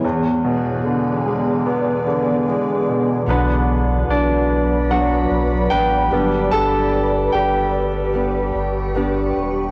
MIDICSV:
0, 0, Header, 1, 5, 480
1, 0, Start_track
1, 0, Tempo, 810811
1, 22, Time_signature, 4, 2, 24, 8
1, 5749, End_track
2, 0, Start_track
2, 0, Title_t, "Ambient pad"
2, 0, Program_c, 0, 92
2, 0, Note_on_c, 0, 52, 70
2, 0, Note_on_c, 0, 59, 69
2, 0, Note_on_c, 0, 68, 61
2, 22, Note_on_c, 0, 74, 82
2, 1919, Note_off_c, 0, 52, 0
2, 1921, Note_off_c, 0, 59, 0
2, 1921, Note_off_c, 0, 68, 0
2, 1923, Note_off_c, 0, 74, 0
2, 1941, Note_on_c, 0, 71, 67
2, 1941, Note_on_c, 0, 74, 62
2, 1941, Note_on_c, 0, 83, 77
2, 1943, Note_on_c, 0, 54, 72
2, 3605, Note_off_c, 0, 54, 0
2, 3605, Note_off_c, 0, 83, 0
2, 3616, Note_on_c, 0, 83, 84
2, 3617, Note_on_c, 0, 67, 65
2, 4569, Note_off_c, 0, 83, 0
2, 4577, Note_on_c, 0, 85, 80
2, 5749, Note_off_c, 0, 67, 0
2, 5749, Note_off_c, 0, 71, 0
2, 5749, Note_off_c, 0, 74, 0
2, 5749, Note_off_c, 0, 85, 0
2, 5749, End_track
3, 0, Start_track
3, 0, Title_t, "Grand piano"
3, 0, Program_c, 1, 0
3, 0, Control_c, 1, 64, 127
3, 27, Note_on_c, 1, 40, 51
3, 30, Control_c, 1, 64, 0
3, 122, Control_c, 1, 64, 127
3, 263, Note_on_c, 1, 47, 43
3, 500, Note_on_c, 1, 50, 40
3, 743, Note_on_c, 1, 56, 41
3, 985, Note_on_c, 1, 59, 44
3, 1199, Note_off_c, 1, 47, 0
3, 1214, Note_off_c, 1, 50, 0
3, 1222, Note_on_c, 1, 50, 41
3, 1457, Note_off_c, 1, 56, 0
3, 1466, Note_on_c, 1, 56, 42
3, 1708, Note_on_c, 1, 47, 35
3, 1920, Note_off_c, 1, 40, 0
3, 1920, Note_off_c, 1, 59, 0
3, 1921, Note_off_c, 1, 50, 0
3, 1929, Note_off_c, 1, 56, 0
3, 1938, Note_off_c, 1, 47, 0
3, 1947, Note_on_c, 1, 50, 41
3, 1949, Control_c, 1, 64, 0
3, 1949, Note_on_c, 1, 59, 54
3, 1952, Note_on_c, 1, 62, 45
3, 1956, Note_on_c, 1, 71, 61
3, 2050, Control_c, 1, 64, 127
3, 2404, Note_off_c, 1, 59, 0
3, 2423, Note_off_c, 1, 62, 0
3, 2431, Note_on_c, 1, 74, 60
3, 2432, Note_on_c, 1, 62, 54
3, 2443, Note_off_c, 1, 71, 0
3, 2883, Note_off_c, 1, 62, 0
3, 2883, Note_off_c, 1, 74, 0
3, 2903, Note_on_c, 1, 54, 36
3, 2906, Note_on_c, 1, 78, 64
3, 2907, Note_on_c, 1, 59, 33
3, 2911, Note_on_c, 1, 62, 37
3, 2915, Note_on_c, 1, 66, 52
3, 3118, Note_off_c, 1, 54, 0
3, 3120, Note_off_c, 1, 59, 0
3, 3123, Note_off_c, 1, 62, 0
3, 3360, Note_off_c, 1, 78, 0
3, 3365, Note_off_c, 1, 66, 0
3, 3374, Note_on_c, 1, 79, 80
3, 3381, Note_on_c, 1, 71, 60
3, 3601, Note_off_c, 1, 50, 0
3, 3623, Note_on_c, 1, 55, 42
3, 3626, Note_on_c, 1, 59, 37
3, 3629, Control_c, 1, 64, 0
3, 3632, Note_on_c, 1, 62, 50
3, 3723, Control_c, 1, 64, 127
3, 3834, Note_off_c, 1, 79, 0
3, 3838, Note_off_c, 1, 71, 0
3, 3856, Note_on_c, 1, 81, 85
3, 3864, Note_on_c, 1, 69, 73
3, 4319, Note_off_c, 1, 55, 0
3, 4319, Note_off_c, 1, 69, 0
3, 4320, Note_off_c, 1, 59, 0
3, 4323, Note_off_c, 1, 62, 0
3, 4336, Note_on_c, 1, 79, 69
3, 4349, Note_on_c, 1, 67, 54
3, 4353, Note_off_c, 1, 81, 0
3, 5515, Note_off_c, 1, 79, 0
3, 5522, Note_off_c, 1, 67, 0
3, 5749, End_track
4, 0, Start_track
4, 0, Title_t, "Steel-string acoustic guitar"
4, 0, Program_c, 2, 25
4, 1931, Note_on_c, 2, 47, 59
4, 1940, Note_on_c, 2, 54, 55
4, 1945, Note_on_c, 2, 59, 57
4, 1949, Note_on_c, 2, 62, 61
4, 1956, Note_on_c, 2, 66, 63
4, 2888, Note_off_c, 2, 54, 0
4, 2895, Note_on_c, 2, 54, 42
4, 2897, Note_off_c, 2, 47, 0
4, 2899, Note_off_c, 2, 59, 0
4, 2902, Note_on_c, 2, 59, 43
4, 2904, Note_off_c, 2, 62, 0
4, 2905, Note_off_c, 2, 66, 0
4, 2907, Note_on_c, 2, 62, 46
4, 2912, Note_on_c, 2, 66, 45
4, 3367, Note_off_c, 2, 54, 0
4, 3375, Note_on_c, 2, 54, 43
4, 3377, Note_off_c, 2, 59, 0
4, 3380, Note_off_c, 2, 62, 0
4, 3380, Note_off_c, 2, 66, 0
4, 3380, Note_on_c, 2, 59, 43
4, 3383, Note_on_c, 2, 62, 49
4, 3387, Note_on_c, 2, 66, 49
4, 3610, Note_off_c, 2, 62, 0
4, 3612, Note_off_c, 2, 66, 0
4, 3614, Note_on_c, 2, 67, 55
4, 3618, Note_off_c, 2, 54, 0
4, 3618, Note_on_c, 2, 62, 53
4, 3619, Note_off_c, 2, 59, 0
4, 3626, Note_on_c, 2, 59, 43
4, 3629, Note_on_c, 2, 55, 46
4, 3631, Note_on_c, 2, 50, 37
4, 3636, Note_on_c, 2, 43, 37
4, 4809, Note_off_c, 2, 55, 0
4, 4814, Note_off_c, 2, 59, 0
4, 4816, Note_on_c, 2, 55, 47
4, 4817, Note_off_c, 2, 62, 0
4, 4818, Note_off_c, 2, 67, 0
4, 4821, Note_on_c, 2, 59, 47
4, 4824, Note_on_c, 2, 62, 53
4, 4826, Note_off_c, 2, 50, 0
4, 4829, Note_off_c, 2, 43, 0
4, 4830, Note_on_c, 2, 67, 50
4, 5290, Note_off_c, 2, 55, 0
4, 5294, Note_off_c, 2, 59, 0
4, 5297, Note_on_c, 2, 55, 60
4, 5298, Note_off_c, 2, 62, 0
4, 5301, Note_on_c, 2, 59, 59
4, 5303, Note_off_c, 2, 67, 0
4, 5305, Note_on_c, 2, 62, 65
4, 5310, Note_on_c, 2, 67, 69
4, 5749, Note_off_c, 2, 55, 0
4, 5749, Note_off_c, 2, 59, 0
4, 5749, Note_off_c, 2, 62, 0
4, 5749, Note_off_c, 2, 67, 0
4, 5749, End_track
5, 0, Start_track
5, 0, Title_t, "Sub bass"
5, 0, Program_c, 3, 38
5, 1938, Note_on_c, 3, 35, 116
5, 2396, Note_off_c, 3, 35, 0
5, 2420, Note_on_c, 3, 35, 79
5, 3117, Note_off_c, 3, 35, 0
5, 3142, Note_on_c, 3, 35, 82
5, 3365, Note_off_c, 3, 35, 0
5, 3387, Note_on_c, 3, 33, 81
5, 3608, Note_off_c, 3, 33, 0
5, 3623, Note_on_c, 3, 31, 91
5, 3846, Note_off_c, 3, 31, 0
5, 3861, Note_on_c, 3, 31, 104
5, 4318, Note_off_c, 3, 31, 0
5, 4347, Note_on_c, 3, 31, 79
5, 5041, Note_off_c, 3, 31, 0
5, 5062, Note_on_c, 3, 31, 100
5, 5518, Note_off_c, 3, 31, 0
5, 5546, Note_on_c, 3, 28, 85
5, 5749, Note_off_c, 3, 28, 0
5, 5749, End_track
0, 0, End_of_file